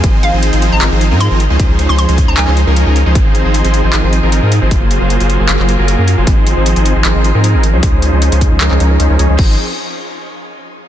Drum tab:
CC |----------------|----------------|----------------|----------------|
HH |x-x-xxx-x-x-x-x-|x-x-xxx-x-x-x-x-|x-x-xxx-x-x-x-x-|x-x-xxx-x-x-x-x-|
CP |--------x-------|--------xx------|--------x-------|--------xx------|
BD |o---------------|o-----o---------|o---------------|o---------------|

CC |----------------|----------------|x---------------|
HH |x-x-xxx-x-x-x-x-|x-x-xxx-x-x-x-x-|----------------|
CP |--------x-------|--------xx------|----------------|
BD |o---------------|o-----o---------|o---------------|